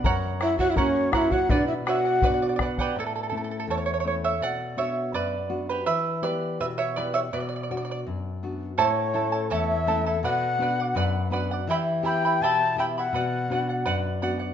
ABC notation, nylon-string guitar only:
X:1
M:2/4
L:1/8
Q:1/4=82
K:Bm
V:1 name="Nylon-string guitar"
F,,2 [^A,CF]2 | B,,2 [B,DF]2 | A,, [A,CE] E,, [A,CE] | B,, [B,DF] F,, [B,DF] |
E, [B,EG] B,, [B,EG] | B,, [B,DF] F,, [B,DF] | A,, [A,CE] E,, [A,CE] | B,, [B,DF] F,, [B,DF] |
E, [B,EG] B,, [B,EG] | B,, [B,DF] F,, [B,DF] |]